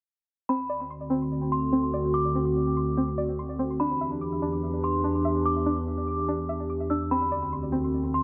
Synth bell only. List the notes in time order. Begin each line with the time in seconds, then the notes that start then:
0.49 B5
1.52 C6
2.14 D6
3.80 B5
4.84 C6
5.46 D6
6.90 E6
7.11 B5
8.14 C6